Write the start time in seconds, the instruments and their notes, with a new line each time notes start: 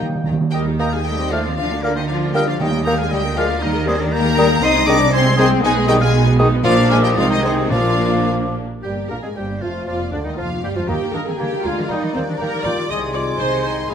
Already playing: french horn section A#3 G4, bassoon A#3, oboe G5
0.01 timpani D#3
0.09 timpani D#3
0.15 timpani D#3
0.24 double bass section D#2, timpani D#3, cello section D#3, violin section G5 A#5
0.33 timpani D#3
0.40 timpani D#3
0.51 double bass section D#2, cello section D#3, french horn section G3, viola section G4 A#4, violin section G4 G5, oboe D#5
0.67 viola section D#4 G4
0.79 bassoon A#3, french horn section A#3, viola section G4 A#4, violin section A#4 A#5, clarinet D#5, oboe G5, flute D#6
0.92 french horn section G#3, viola section D#4 G4, violin section G#4 G#5, oboe F5
1.06 french horn section G3, viola section A3 A4, violin section G4 G5, oboe D#5
1.19 viola section C4 C5
1.31 french horn section F3, bassoon A3, viola section A3 A4, violin section F4 F5, clarinet C5, oboe D5, flute F6
1.47 viola section C4 C5
1.56 double bass section D2, cello section D3, french horn section F3, viola section D4 F4, violin section F4 F5, oboe D5
1.72 viola section A#3 D4
1.83 french horn section D3, bassoon A#3, viola section D4 F4, violin section D4 D5, oboe A#4, clarinet A#4, flute F6
1.95 french horn section D#3, viola section A#3 D4, violin section D#4 D#5, oboe C5
2.08 french horn section F3, viola section D4 F4, violin section F4 F5, oboe D5
2.23 viola section A#3 D4
2.34 french horn section G3, bassoon A#3, viola section D4 F4, violin section G4 G5, clarinet A#4, oboe D#5, flute F6
2.48 french horn section F3, viola section A#3 D4, violin section F4 F5, oboe D5
2.59 double bass section D#2, timpani D#3, cello section D#3, french horn section G3, viola section G3 D#4, violin section G4 G5, oboe D#5
2.73 viola section A#3 G4
2.84 viola section G3 D#4, french horn section A#3, bassoon A#3, clarinet A#4, violin section A#4 A#5, oboe G5, flute D#6
2.98 french horn section G#3, viola section A#3 G4, violin section G#4 G#5, oboe F5
3.09 double bass section D2, cello section D3, french horn section G3, viola section G#3 G#4, violin section G4, oboe D#5
3.13 violin section G5
3.24 viola section A#3 A#4
3.35 french horn section F3, viola section G#3 G#4, bassoon G#3, violin section F4 F5, clarinet A#4, oboe D5, flute F6
3.48 viola section A#3 A#4
3.61 double bass section D#2, french horn section D#3, cello section D#3, viola section G3 G4, violin section D#4 D#5, oboe A#4
3.74 viola section A#3 A#4
3.86 french horn section C3, viola section G3 G4, bassoon G3, violin section C4 C5, oboe G#4, clarinet A#4, flute D#6
3.99 french horn section D3, viola section A#3 A#4, violin section D4 D5, oboe A#4
4.11 viola section G3 G4, french horn section A#3, violin section A#4 A#5, oboe G5
4.25 viola section A#3 A#4
4.37 viola section G3 G4, bassoon G3, clarinet A#4, flute D#6
4.50 viola section A#3 A#4
4.63 double bass section C2, cello section C3, viola section C4 D#4, french horn section D#4, violin section D#5 D#6, oboe C6
4.76 viola section G#3 C4
4.87 bassoon D#3, viola section C4 D#4, french horn section D4, clarinet G#4, violin section D5 D6, oboe A#5, flute D#6
5.01 viola section G#3 C4
5.10 french horn section C4, viola section C4 D#4, violin section C5 C6, oboe G#5
5.25 viola section G#3 C4
5.37 bassoon D#3, french horn section C4, viola section C4 D#4, clarinet G#4, violin section C5 C6, oboe G#5, flute D#6
5.51 viola section G#3 C4
5.62 double bass section B1, cello section B2, french horn section G#3, viola section B3 D#4, violin section G#4 G#5, oboe D#5
5.76 viola section G#3 B3
5.87 bassoon D#3, french horn section G3, viola section B3 D#4, violin section G4 G5, clarinet G#4, oboe D#5, flute D#6
6.00 french horn section G#3, viola section G#3 B3, violin section G#4 G#5, oboe F5
6.14 viola section B3 D#4
6.27 viola section G#3 B3
6.39 bassoon D#3, viola section B3 D#4, clarinet G#4, flute D#6
6.54 viola section G#3 B3
6.63 double bass section A#1, timpani A#2, cello section A#2, bassoon F3, french horn section F3, viola section A#3 D4, violin section F4 F5, clarinet A#4, oboe D5, flute D6
6.89 french horn section G#3, violin section G#4 G#5, oboe F5
7.02 french horn section G3, violin section G4 G5, oboe D#5
7.15 double bass section C2, cello section C3, bassoon D#3, french horn section F3, viola section G#3 D#4, violin section F4 F5, clarinet G#4, oboe D5, flute D#6
7.30 french horn section D#3, violin section D#4 D#5, oboe C5
7.42 violin section C4 C5, oboe G#4
7.46 french horn section C3
7.70 double bass section A#1, timpani A#2, cello section A#2, bassoon F3, french horn section F3, viola section A#3 D4, violin section F4 F5, clarinet A#4, oboe D5, flute D6
8.83 double bass section G1, cello section G2, bassoon G3, french horn section G3, clarinet A#3, oboe G4, viola section G4, flute G4, violin section A#4 G5
9.09 double bass section A#1, cello section A#2, bassoon A#3, french horn section A#3, clarinet D4, oboe A#4, viola section A#4, flute A#4, violin section A#5
9.22 cello section G#2, bassoon G#3, clarinet C4, flute G#4, oboe G#4, viola section G#4, violin section G#5
9.27 french horn section G#3
9.35 double bass section G1, cello section G2, bassoon G3, french horn section G3, clarinet A#3, flute G4, viola section G4, oboe G4, violin section C5 G5
9.61 double bass section F1, cello section F2, bassoon F3, french horn section F3, clarinet A3, flute F4, oboe F4, viola section F4, violin section F5
9.85 double bass section F1, cello section F2, bassoon F3, clarinet A#3, flute F4, oboe F4, viola section F4, violin section D5 F5
9.90 french horn section F3
10.11 double bass section D2, cello section D2, bassoon D3, clarinet F3, flute D4, viola section D4, oboe D4, violin section D5
10.16 french horn section D3
10.24 cello section D#2, bassoon D#3, french horn section D#3, clarinet G3, oboe D#4, flute D#4, viola section D#4, violin section D#5
10.36 double bass section F1, cello section F2, bassoon F3, french horn section F3, clarinet A#3, flute F4, viola section F4, oboe F4, violin section F5
10.62 double bass section G1, cello section G2, bassoon G3, french horn section G3, clarinet A#3, flute G4, viola section G4, oboe G4, violin section G5
10.74 cello section F2, french horn section F3, bassoon F3, clarinet G#3, flute F4, oboe F4, viola section F4, violin section F5
10.87 double bass section D#2, timpani D#3, cello section D#3, french horn section A#3 A#4, bassoon A#3, clarinet A#3, viola section G4, violin section A#4 G5, oboe D#5, flute A#5
11.02 cello section D#3
11.13 double bass section D#2, cello section D#3, bassoon A#3, clarinet D4, viola section A#4, oboe D#5, flute A#5, violin section A#5
11.27 cello section D#3, clarinet C4, viola section G#4, violin section G#5
11.38 double bass section D2, cello section D3, french horn section G#3 A#4, clarinet A#3, bassoon A#3, viola section G4, violin section D5 G5, oboe G#5, flute A#5
11.52 cello section D3
11.63 double bass section D2, cello section D3, clarinet G#3, bassoon A#3, viola section F4, violin section F5, oboe G#5, flute A#5
11.77 cello section D3
11.89 double bass section D#2, cello section D#3, clarinet G3, french horn section G3 A#4, bassoon A#3, viola section D#4, violin section D#5, oboe G5, flute A#5
12.02 cello section D#3
12.13 double bass section D#2, clarinet D#3, cello section D#3, bassoon A#3, viola section C4, violin section C5, oboe G5, flute A#5
12.28 cello section D#3, clarinet F3, viola section D4, violin section D5
12.38 double bass section D#2, cello section D#3, french horn section G3 A#4, bassoon A#3, clarinet D#4, viola section A#4, oboe G5, flute A#5, violin section A#5
12.54 cello section D#3
12.64 double bass section D#2, cello section D#3, bassoon A#3, clarinet F4, viola section D5, oboe G5, flute A#5, violin section D6
12.78 cello section D#3
12.88 double bass section C2, cello section C3, french horn section D#3 G#4, clarinet G#4, viola section D#5, oboe G#5, flute C6, violin section D#6
12.92 bassoon G#3
13.14 clarinet F4, viola section D5, violin section D6
13.39 double bass section C2, cello section C3, clarinet D#4, viola section C5, violin section D#5 C6
13.63 clarinet D#4, viola section C5, violin section C6
13.88 double bass section B1, cello section B2, clarinet B3, viola section G#4, oboe D#5, violin section F5 G#5, flute B5